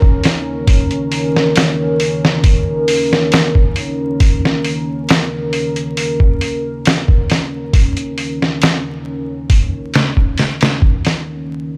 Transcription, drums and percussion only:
0.02 kick medium
0.24 snare medium
0.24 open hi-hat medium
0.67 kick loud
0.67 open hi-hat medium
0.91 closed hi-hat soft
1.12 open hi-hat medium
1.36 snare soft
1.56 snare loud
1.56 open hi-hat medium
2.00 open hi-hat medium
2.25 snare medium
2.44 kick loud
2.44 open hi-hat medium
2.88 open hi-hat medium
3.13 snare soft
3.32 snare loud
3.32 open hi-hat medium
3.55 kick medium
3.76 open hi-hat medium
4.20 kick loud
4.20 open hi-hat medium
4.45 snare soft
4.64 open hi-hat medium
5.09 snare loud
5.09 open hi-hat medium
5.53 open hi-hat medium
5.76 closed hi-hat soft
5.97 open hi-hat medium
6.20 kick medium
6.41 open hi-hat medium
6.85 snare loud
6.85 open hi-hat medium
7.08 kick medium
7.30 snare medium
7.30 open hi-hat medium
7.73 kick loud
7.73 open hi-hat medium
7.97 closed hi-hat soft
8.18 open hi-hat medium
8.42 snare soft
8.62 snare loud
8.62 open hi-hat medium
9.50 kick medium
9.50 open hi-hat medium
9.94 snare medium
9.94 open hi-hat medium
10.17 kick medium
10.38 snare soft
10.38 open hi-hat medium
10.61 snare medium
10.61 open hi-hat medium
10.82 kick medium
11.05 snare soft
11.05 open hi-hat medium

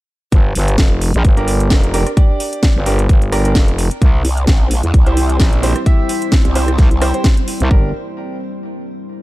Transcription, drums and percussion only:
0.32 kick loud
0.32 closed hi-hat medium
0.55 open hi-hat loud
0.68 closed hi-hat medium
0.78 kick loud
0.78 snare loud
0.78 closed hi-hat medium
1.02 open hi-hat loud
1.14 closed hi-hat medium
1.25 kick loud
1.25 closed hi-hat medium
1.37 closed hi-hat soft
1.48 open hi-hat loud
1.60 closed hi-hat medium
1.70 kick loud
1.70 snare loud
1.70 closed hi-hat medium
1.83 closed hi-hat soft
1.94 open hi-hat loud
2.07 cross-stick medium
2.07 closed hi-hat medium
2.17 kick loud
2.17 closed hi-hat medium
2.40 open hi-hat loud
2.53 closed hi-hat medium
2.63 kick loud
2.63 snare loud
2.63 closed hi-hat medium
2.86 open hi-hat loud
2.99 closed hi-hat medium
3.09 kick loud
3.09 closed hi-hat medium
3.22 closed hi-hat soft
3.32 cross-stick medium
3.32 open hi-hat loud
3.45 closed hi-hat medium
3.55 kick loud
3.55 snare loud
3.55 closed hi-hat medium
3.68 closed hi-hat soft
3.79 open hi-hat loud
3.91 closed hi-hat medium
4.02 kick loud
4.02 closed hi-hat medium
4.25 open hi-hat loud
4.37 closed hi-hat soft
4.47 kick loud
4.47 snare loud
4.47 closed hi-hat medium
4.71 open hi-hat loud
4.83 closed hi-hat medium
4.94 kick loud
4.94 closed hi-hat medium
5.06 closed hi-hat soft
5.17 open hi-hat loud
5.30 closed hi-hat medium
5.40 kick loud
5.40 snare loud
5.40 closed hi-hat medium
5.53 closed hi-hat soft
5.63 open hi-hat loud
5.76 cross-stick medium
5.76 closed hi-hat medium
5.86 kick loud
5.86 closed hi-hat medium
6.09 open hi-hat loud
6.22 closed hi-hat soft
6.32 kick loud
6.32 snare loud
6.32 closed hi-hat medium
6.45 closed hi-hat soft
6.55 open hi-hat loud
6.68 cross-stick medium
6.68 closed hi-hat medium
6.78 kick loud
6.78 snare soft
6.78 closed hi-hat medium
6.91 closed hi-hat soft
7.02 cross-stick medium
7.02 open hi-hat loud
7.14 closed hi-hat soft
7.24 kick loud
7.24 snare loud
7.24 closed hi-hat medium
7.37 closed hi-hat soft
7.48 open hi-hat loud
7.60 closed hi-hat medium
7.71 kick loud

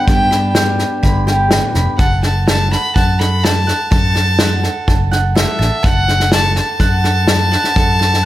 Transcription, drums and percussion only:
0.07 kick loud
0.07 snare soft
0.31 snare soft
0.55 snare loud
0.79 snare soft
1.03 kick medium
1.03 snare soft
1.27 snare soft
1.51 snare medium
1.74 snare soft
1.98 kick loud
1.98 snare soft
2.23 snare soft
2.48 snare medium
2.72 snare soft
2.96 kick medium
2.96 snare soft
3.20 snare soft
3.45 snare medium
3.68 snare soft
3.91 kick medium
3.91 snare soft
4.16 snare soft
4.39 snare loud
4.64 snare soft
4.88 kick medium
4.88 snare soft
5.12 snare soft
5.36 snare medium
5.61 snare soft
5.84 kick loud
5.84 snare soft
6.08 snare soft
6.20 snare soft
6.32 snare loud
6.56 snare soft
6.79 kick medium
6.79 snare soft
7.04 snare soft
7.28 snare medium
7.52 snare soft
7.64 snare soft
7.76 kick loud
7.76 snare soft
8.01 snare soft
8.14 snare soft

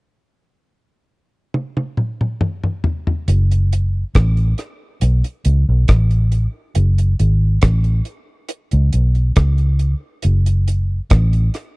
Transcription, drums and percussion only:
1.54 high tom medium
1.77 high tom medium
1.97 mid tom medium
2.21 mid tom medium
2.41 mid tom medium
2.64 mid tom medium
2.84 floor tom loud
3.07 floor tom medium
3.28 closed hi-hat medium
3.51 closed hi-hat medium
3.73 closed hi-hat medium
4.15 kick loud
4.15 cross-stick loud
4.15 closed hi-hat medium
4.37 closed hi-hat soft
4.58 cross-stick medium
4.58 closed hi-hat medium
5.01 closed hi-hat medium
5.24 closed hi-hat medium
5.45 closed hi-hat medium
5.88 kick loud
5.88 cross-stick loud
5.88 closed hi-hat medium
6.11 closed hi-hat soft
6.32 closed hi-hat medium
6.75 closed hi-hat medium
6.98 closed hi-hat medium
7.19 closed hi-hat medium
7.62 kick loud
7.62 cross-stick loud
7.62 closed hi-hat medium
7.84 closed hi-hat soft
8.05 closed hi-hat medium
8.49 closed hi-hat medium
8.71 closed hi-hat medium
8.93 closed hi-hat medium
9.15 closed hi-hat soft
9.36 kick loud
9.36 cross-stick loud
9.36 closed hi-hat medium
9.58 closed hi-hat soft
9.79 closed hi-hat medium
10.22 closed hi-hat medium
10.46 closed hi-hat medium
10.68 closed hi-hat medium
11.10 kick loud
11.10 cross-stick loud
11.10 closed hi-hat medium
11.33 closed hi-hat soft
11.54 cross-stick medium
11.54 closed hi-hat medium

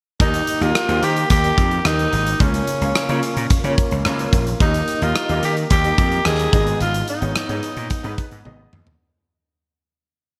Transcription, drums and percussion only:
0.20 kick loud
0.20 closed hi-hat medium
0.34 closed hi-hat medium
0.47 closed hi-hat medium
0.61 closed hi-hat soft
0.75 cross-stick loud
0.75 closed hi-hat medium
0.89 closed hi-hat soft
1.03 closed hi-hat medium
1.16 closed hi-hat soft
1.30 kick medium
1.30 closed hi-hat medium
1.44 closed hi-hat soft
1.58 kick medium
1.58 closed hi-hat medium
1.71 closed hi-hat soft
1.85 cross-stick loud
1.85 closed hi-hat medium
1.99 closed hi-hat soft
2.13 closed hi-hat medium
2.27 closed hi-hat medium
2.40 kick loud
2.40 closed hi-hat medium
2.54 closed hi-hat medium
2.67 closed hi-hat medium
2.82 closed hi-hat soft
2.95 cross-stick loud
2.95 closed hi-hat medium
3.09 closed hi-hat soft
3.23 closed hi-hat medium
3.37 closed hi-hat soft
3.50 kick medium
3.50 closed hi-hat medium
3.64 closed hi-hat soft
3.78 kick medium
3.78 closed hi-hat medium
3.91 closed hi-hat soft
4.05 cross-stick medium
4.05 closed hi-hat medium
4.19 closed hi-hat soft
4.33 kick medium
4.33 closed hi-hat medium
4.47 closed hi-hat medium
4.60 kick loud
4.60 closed hi-hat medium
4.74 closed hi-hat medium
4.88 closed hi-hat medium
5.02 closed hi-hat soft
5.15 cross-stick loud
5.15 closed hi-hat medium
5.29 closed hi-hat soft
5.43 closed hi-hat medium
5.57 closed hi-hat soft
5.70 kick medium
5.70 closed hi-hat medium
5.84 closed hi-hat soft
5.98 kick medium
5.98 closed hi-hat medium
6.12 closed hi-hat soft
6.25 cross-stick loud
6.25 closed hi-hat medium
6.39 closed hi-hat soft
6.53 kick loud
6.53 closed hi-hat medium
6.67 closed hi-hat medium
6.81 closed hi-hat medium
6.94 closed hi-hat medium
7.08 closed hi-hat medium
7.22 closed hi-hat soft
7.35 cross-stick loud
7.35 closed hi-hat medium
7.49 closed hi-hat soft
7.63 closed hi-hat medium
7.77 closed hi-hat soft
7.90 kick medium
7.90 closed hi-hat medium
8.04 closed hi-hat soft
8.18 kick medium
8.18 closed hi-hat medium
8.31 closed hi-hat soft
8.45 high tom medium
8.73 mid tom medium
8.87 floor tom medium

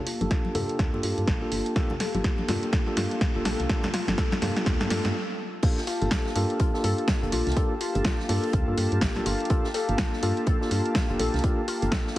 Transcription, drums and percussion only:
0.07 open hi-hat loud
0.21 closed hi-hat medium
0.21 high conga medium
0.31 kick loud
0.31 snare medium
0.31 closed hi-hat medium
0.45 high conga medium
0.55 open hi-hat loud
0.55 low conga loud
0.69 closed hi-hat medium
0.79 kick loud
0.79 snare medium
0.79 closed hi-hat medium
0.94 muted conga soft
1.03 open hi-hat loud
1.18 closed hi-hat medium
1.27 kick loud
1.27 snare medium
1.27 closed hi-hat medium
1.52 open hi-hat loud
1.66 closed hi-hat medium
1.76 kick loud
1.76 snare medium
1.76 closed hi-hat medium
1.90 muted conga medium
1.90 low conga medium
2.00 snare medium
2.00 open hi-hat loud
2.15 closed hi-hat medium
2.15 high conga medium
2.24 kick loud
2.24 snare medium
2.24 closed hi-hat medium
2.38 high conga medium
2.48 snare medium
2.48 open hi-hat loud
2.48 low conga medium
2.63 closed hi-hat soft
2.73 kick loud
2.73 snare medium
2.73 closed hi-hat medium
2.88 muted conga soft
2.97 snare medium
2.97 open hi-hat loud
3.11 closed hi-hat medium
3.21 kick loud
3.21 snare medium
3.21 closed hi-hat medium
3.45 snare medium
3.45 open hi-hat loud
3.60 closed hi-hat medium
3.69 kick loud
3.69 snare medium
3.69 closed hi-hat medium
3.84 snare medium
3.84 muted conga medium
3.84 low conga medium
3.94 snare medium
3.94 open hi-hat loud
4.07 snare medium
4.07 closed hi-hat medium
4.07 high conga medium
4.18 kick loud
4.18 snare loud
4.18 closed hi-hat medium
4.32 snare medium
4.32 muted conga soft
4.32 high conga loud
4.42 snare loud
4.42 open hi-hat loud
4.42 low conga medium
4.57 snare medium
4.57 closed hi-hat medium
4.66 kick loud
4.66 snare loud
4.66 closed hi-hat medium
4.80 snare medium
4.80 muted conga medium
4.90 snare loud
4.90 open hi-hat loud
5.05 snare medium
5.05 closed hi-hat medium
5.62 kick loud
5.62 closed hi-hat medium
5.62 crash loud
5.77 snare medium
5.87 snare medium
5.87 closed hi-hat medium
5.87 open hi-hat loud
6.02 closed hi-hat medium
6.11 kick loud
6.11 snare loud
6.11 closed hi-hat loud
6.11 closed hi-hat medium
6.26 snare soft
6.36 closed hi-hat medium
6.36 open hi-hat loud
6.50 closed hi-hat medium
6.59 kick loud
6.59 closed hi-hat medium
6.74 snare soft
6.84 closed hi-hat medium
6.84 open hi-hat loud
6.98 closed hi-hat medium
7.08 kick loud
7.08 snare loud
7.08 closed hi-hat medium
7.23 closed hi-hat soft
7.32 closed hi-hat medium
7.32 open hi-hat loud
7.47 snare medium
7.47 closed hi-hat soft
7.52 closed hi-hat medium
7.57 kick loud
7.57 closed hi-hat medium
7.80 closed hi-hat medium
7.80 open hi-hat loud
7.95 closed hi-hat soft
7.95 closed hi-hat medium
8.05 kick loud
8.05 snare loud
8.05 closed hi-hat medium
8.20 snare medium
8.29 open hi-hat loud
8.29 open hi-hat medium
8.44 closed hi-hat medium
8.53 kick loud
8.53 closed hi-hat medium
8.78 closed hi-hat medium
8.78 open hi-hat loud
8.92 closed hi-hat medium
9.01 kick loud
9.01 snare loud
9.01 closed hi-hat medium
9.15 snare soft
9.15 closed hi-hat soft
9.26 closed hi-hat medium
9.26 open hi-hat loud
9.40 closed hi-hat medium
9.45 closed hi-hat medium
9.50 kick loud
9.50 closed hi-hat medium
9.64 snare medium
9.74 snare medium
9.74 closed hi-hat medium
9.74 open hi-hat loud
9.89 closed hi-hat medium
9.98 kick loud
9.98 snare loud
9.98 closed hi-hat medium
10.13 snare medium
10.23 closed hi-hat medium
10.23 open hi-hat loud
10.37 closed hi-hat medium
10.46 kick loud
10.46 closed hi-hat medium
10.62 snare soft
10.71 closed hi-hat medium
10.71 open hi-hat loud
10.86 closed hi-hat medium
10.95 kick loud
10.95 snare loud
10.95 closed hi-hat medium
11.09 closed hi-hat soft
11.19 closed hi-hat medium
11.19 open hi-hat loud
11.34 snare soft
11.34 closed hi-hat soft
11.39 closed hi-hat medium
11.44 kick loud
11.44 closed hi-hat medium
11.68 closed hi-hat medium
11.68 open hi-hat loud
11.82 closed hi-hat soft
11.82 closed hi-hat medium
11.92 kick loud
11.92 snare loud
11.92 closed hi-hat medium
12.07 snare medium

